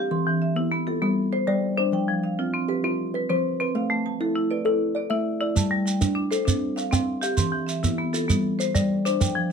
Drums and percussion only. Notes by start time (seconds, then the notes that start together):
5.57 shekere
5.87 shekere
6.01 shekere
6.32 shekere
6.48 shekere
6.78 shekere
6.93 shekere
7.23 shekere
7.37 shekere
7.69 shekere
7.84 shekere
8.14 shekere
8.30 shekere
8.60 shekere
8.75 shekere
9.06 shekere
9.21 shekere